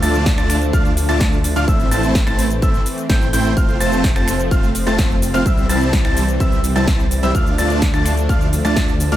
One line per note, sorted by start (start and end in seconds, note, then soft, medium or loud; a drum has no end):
0.00 0.36 D2 loud
0.00 1.66 F3 medium
0.00 3.53 A3 medium
0.00 0.31 A3 loud
0.00 1.66 D4 loud
0.00 0.31 D4 medium
0.00 0.31 F4 medium
0.00 0.31 D5 medium
0.00 0.31 A5 loud
0.00 0.31 A6 loud
0.00 open hi-hat loud
0.00 shaker medium
0.14 closed hi-hat soft
0.14 shaker soft
0.26 kick loud
0.26 snare loud
0.26 closed hi-hat medium
0.26 shaker soft
0.38 0.71 D2 loud
0.38 0.56 A3 medium
0.38 0.56 D4 medium
0.38 0.56 F4 medium
0.38 0.56 D5 medium
0.38 0.56 A5 loud
0.38 0.56 A6 loud
0.38 finger snap medium
0.38 closed hi-hat soft
0.38 shaker soft
0.50 finger snap medium
0.50 open hi-hat loud
0.50 shaker medium
0.62 closed hi-hat medium
0.62 shaker soft
0.73 0.91 A3 medium
0.73 0.91 D4 medium
0.73 0.91 F4 medium
0.73 0.91 D5 medium
0.73 0.91 F5 loud
0.73 0.91 F6 loud
0.73 kick loud
0.73 closed hi-hat soft
0.73 shaker soft
0.85 closed hi-hat soft
0.85 shaker soft
0.97 open hi-hat loud
0.97 shaker medium
1.09 1.54 D2 medium
1.09 1.37 A3 loud
1.09 1.37 D4 medium
1.09 1.37 F4 medium
1.09 1.38 D5 medium
1.09 1.37 A5 loud
1.09 1.38 A6 loud
1.09 closed hi-hat medium
1.09 shaker soft
1.21 kick loud
1.21 snare loud
1.21 closed hi-hat medium
1.21 shaker soft
1.32 closed hi-hat soft
1.32 shaker soft
1.44 open hi-hat loud
1.44 shaker medium
1.56 1.65 D2 loud
1.56 1.65 A3 medium
1.56 1.65 D4 medium
1.56 1.65 F4 medium
1.56 1.65 D5 medium
1.56 1.65 F5 loud
1.56 1.65 F6 medium
1.56 closed hi-hat medium
1.56 shaker soft
1.68 1.89 A1 loud
1.68 3.55 E3 medium
1.68 1.88 A3 medium
1.68 7.31 C4 medium
1.68 1.88 C4 medium
1.68 1.88 E4 medium
1.68 1.88 C5 medium
1.68 1.88 E5 loud
1.68 1.88 E6 loud
1.68 kick loud
1.68 closed hi-hat soft
1.68 shaker soft
1.80 closed hi-hat soft
1.80 shaker soft
1.91 2.25 A1 loud
1.91 2.20 A3 medium
1.91 2.20 C4 medium
1.91 2.20 E4 medium
1.91 2.20 C5 medium
1.91 2.20 A5 loud
1.91 2.20 A6 loud
1.91 open hi-hat loud
1.91 shaker medium
2.03 closed hi-hat soft
2.03 shaker soft
2.15 kick loud
2.15 snare loud
2.15 closed hi-hat soft
2.15 shaker soft
2.27 2.60 A1 loud
2.27 2.45 A3 medium
2.27 2.45 C4 medium
2.27 2.45 E4 medium
2.27 2.45 C5 medium
2.27 2.45 A5 loud
2.27 2.45 A6 loud
2.27 finger snap medium
2.27 closed hi-hat soft
2.27 shaker soft
2.39 open hi-hat loud
2.39 shaker medium
2.50 closed hi-hat medium
2.50 shaker soft
2.62 2.78 A1 loud
2.62 2.80 A3 loud
2.62 2.80 C4 medium
2.62 2.80 E4 medium
2.62 2.80 C5 medium
2.62 2.80 E5 loud
2.62 2.80 E6 loud
2.62 kick loud
2.62 closed hi-hat soft
2.62 shaker soft
2.74 closed hi-hat soft
2.74 shaker soft
2.86 open hi-hat loud
2.86 shaker medium
2.98 closed hi-hat soft
2.98 shaker soft
3.10 3.31 A1 loud
3.10 3.28 A3 loud
3.10 3.28 C4 medium
3.10 3.28 E4 medium
3.10 3.28 C5 medium
3.10 3.28 G5 loud
3.10 3.28 G6 loud
3.10 kick loud
3.10 snare loud
3.10 closed hi-hat soft
3.10 shaker soft
3.21 closed hi-hat soft
3.21 shaker soft
3.33 3.54 A1 medium
3.33 3.53 A3 medium
3.33 3.53 C4 medium
3.33 3.53 E4 medium
3.33 3.53 C5 medium
3.33 3.53 G5 loud
3.33 3.53 G6 loud
3.33 open hi-hat loud
3.33 shaker medium
3.45 closed hi-hat soft
3.45 shaker soft
3.57 5.44 F3 medium
3.57 5.44 A3 medium
3.57 3.77 A3 medium
3.57 3.77 C4 medium
3.57 3.77 F4 medium
3.57 3.77 C5 medium
3.57 3.77 F5 loud
3.57 3.77 F6 loud
3.57 kick loud
3.57 closed hi-hat medium
3.57 shaker soft
3.69 closed hi-hat soft
3.69 shaker soft
3.80 4.14 F1 medium
3.80 4.09 A3 loud
3.80 4.09 C4 medium
3.80 4.09 F4 medium
3.80 4.09 C5 medium
3.80 4.09 A5 loud
3.80 4.09 A6 loud
3.80 open hi-hat loud
3.80 shaker medium
3.92 closed hi-hat soft
3.92 shaker soft
4.04 kick loud
4.04 snare loud
4.04 closed hi-hat medium
4.04 shaker soft
4.16 4.49 F1 loud
4.16 4.34 A3 medium
4.16 4.34 C4 medium
4.16 4.34 F4 medium
4.16 4.34 C5 medium
4.16 4.34 A5 loud
4.16 4.34 A6 loud
4.16 finger snap medium
4.16 closed hi-hat soft
4.16 shaker soft
4.28 finger snap medium
4.28 open hi-hat loud
4.28 shaker medium
4.39 closed hi-hat medium
4.39 shaker soft
4.51 4.69 A3 medium
4.51 4.69 C4 medium
4.51 4.69 F4 medium
4.51 4.69 C5 medium
4.51 4.69 F5 loud
4.51 4.69 F6 loud
4.51 kick loud
4.51 closed hi-hat medium
4.51 shaker soft
4.63 closed hi-hat soft
4.63 shaker soft
4.75 open hi-hat loud
4.75 shaker medium
4.87 5.32 F1 loud
4.87 5.15 A3 loud
4.87 5.15 C4 medium
4.87 5.15 F4 medium
4.87 5.15 C5 medium
4.87 5.15 A5 loud
4.87 5.15 A6 loud
4.87 closed hi-hat soft
4.87 shaker soft
4.99 kick loud
4.99 snare loud
4.99 closed hi-hat soft
4.99 shaker soft
5.10 closed hi-hat soft
5.10 shaker soft
5.22 open hi-hat loud
5.22 shaker medium
5.34 5.43 F1 loud
5.34 5.43 A3 medium
5.34 5.43 C4 medium
5.34 5.43 F4 medium
5.34 5.43 C5 medium
5.34 5.43 F5 medium
5.34 5.43 F6 medium
5.34 closed hi-hat medium
5.34 shaker soft
5.46 5.67 C2 loud
5.46 7.33 E3 medium
5.46 5.66 G3 medium
5.46 7.33 G3 medium
5.46 5.66 C4 medium
5.46 5.66 E4 medium
5.46 5.66 C5 medium
5.46 5.66 E5 loud
5.46 5.66 E6 loud
5.46 kick loud
5.46 closed hi-hat medium
5.46 shaker soft
5.58 closed hi-hat soft
5.58 shaker soft
5.69 6.02 C2 loud
5.69 5.98 G3 medium
5.69 5.98 C4 medium
5.69 5.98 E4 medium
5.69 5.98 C5 medium
5.69 5.98 A5 loud
5.69 5.98 A6 loud
5.69 open hi-hat loud
5.69 shaker medium
5.81 closed hi-hat medium
5.81 shaker soft
5.93 kick loud
5.93 snare loud
5.93 closed hi-hat medium
5.93 shaker soft
6.05 6.38 C2 loud
6.05 6.23 G3 medium
6.05 6.23 C4 medium
6.05 6.23 E4 medium
6.05 6.23 C5 medium
6.05 6.23 A5 loud
6.05 6.23 A6 loud
6.05 finger snap medium
6.05 closed hi-hat soft
6.05 shaker soft
6.17 open hi-hat loud
6.17 shaker medium
6.28 closed hi-hat medium
6.28 shaker soft
6.40 6.73 C2 loud
6.40 6.58 G3 medium
6.40 6.58 C4 medium
6.40 6.58 E4 medium
6.40 6.58 C5 medium
6.40 6.58 E5 loud
6.40 6.58 E6 loud
6.40 kick loud
6.40 closed hi-hat medium
6.40 shaker soft
6.52 closed hi-hat soft
6.52 shaker soft
6.64 open hi-hat loud
6.64 shaker medium
6.76 7.21 C2 medium
6.76 7.04 G3 medium
6.76 7.04 C4 medium
6.76 7.04 E4 medium
6.76 7.04 C5 medium
6.76 7.04 A5 loud
6.76 7.04 A6 loud
6.76 closed hi-hat medium
6.76 shaker soft
6.87 kick loud
6.87 snare loud
6.87 closed hi-hat medium
6.87 shaker soft
6.99 closed hi-hat soft
6.99 shaker soft
7.11 open hi-hat loud
7.11 shaker medium
7.23 7.32 C2 medium
7.23 7.32 G3 medium
7.23 7.32 C4 medium
7.23 7.32 E4 medium
7.23 7.32 C5 medium
7.23 7.32 E5 medium
7.23 7.32 E6 medium
7.23 closed hi-hat medium
7.23 shaker soft
7.35 7.56 D2 loud
7.35 9.17 F3 medium
7.35 7.55 A3 loud
7.35 9.17 A3 medium
7.35 9.17 D4 loud
7.35 7.55 D4 medium
7.35 7.55 F4 medium
7.35 7.55 D5 medium
7.35 7.55 F5 loud
7.35 7.55 F6 loud
7.35 kick loud
7.35 closed hi-hat medium
7.35 shaker soft
7.47 closed hi-hat soft
7.47 shaker soft
7.58 7.91 D2 medium
7.58 7.87 A3 loud
7.58 7.87 D4 medium
7.58 7.87 F4 medium
7.58 7.87 D5 medium
7.58 7.87 A5 loud
7.58 7.87 A6 loud
7.58 open hi-hat loud
7.58 shaker medium
7.70 closed hi-hat medium
7.70 shaker soft
7.82 kick loud
7.82 snare loud
7.82 closed hi-hat medium
7.82 shaker soft
7.94 8.27 D2 loud
7.94 8.12 A3 medium
7.94 8.12 D4 medium
7.94 8.12 F4 medium
7.94 8.12 D5 medium
7.94 8.12 A5 loud
7.94 8.12 A6 loud
7.94 finger snap medium
7.94 closed hi-hat soft
7.94 shaker soft
8.06 finger snap medium
8.06 open hi-hat loud
8.06 shaker medium
8.17 closed hi-hat medium
8.17 shaker soft
8.29 8.47 A3 medium
8.29 8.47 D4 medium
8.29 8.47 F4 medium
8.29 8.47 D5 medium
8.29 8.47 F5 loud
8.29 8.47 F6 loud
8.29 kick loud
8.29 closed hi-hat medium
8.29 shaker soft
8.41 closed hi-hat soft
8.41 shaker soft
8.53 open hi-hat loud
8.53 shaker medium
8.65 9.10 D2 loud
8.65 8.93 A3 medium
8.65 8.93 D4 medium
8.65 8.93 F4 medium
8.65 8.93 D5 medium
8.65 8.93 A5 loud
8.65 8.93 A6 loud
8.65 closed hi-hat medium
8.65 shaker soft
8.76 kick loud
8.76 snare loud
8.76 closed hi-hat medium
8.76 shaker soft
8.88 closed hi-hat soft
8.88 shaker soft
9.00 open hi-hat loud
9.00 shaker medium
9.12 9.17 D2 loud
9.12 9.17 A3 medium
9.12 9.17 D4 medium
9.12 9.17 F4 medium
9.12 9.17 D5 medium
9.12 9.17 F5 loud
9.12 9.17 F6 medium
9.12 closed hi-hat medium
9.12 shaker soft